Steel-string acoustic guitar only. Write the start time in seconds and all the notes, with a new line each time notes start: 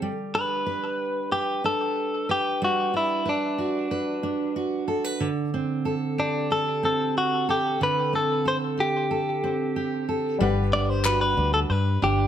Already playing: G4
0.02 G3
0.35 D4
0.66 B4
1.32 B4
1.64 D4
2.29 B4
2.62 G3
2.94 D4
3.25 B4
3.58 F#4
3.91 B4
4.23 D4
4.56 F#4
4.88 A4
5.04 B4
5.20 D3
5.54 C4
5.85 A4
6.19 G4
6.51 A4
6.83 C4
7.49 A4
7.81 D3
8.13 C4
8.45 A4
8.77 G4
9.11 A4
9.44 C4
9.76 G4
10.09 A4
10.40 G3 B4
10.73 D4
11.05 F#4
11.37 D4
12.02 D4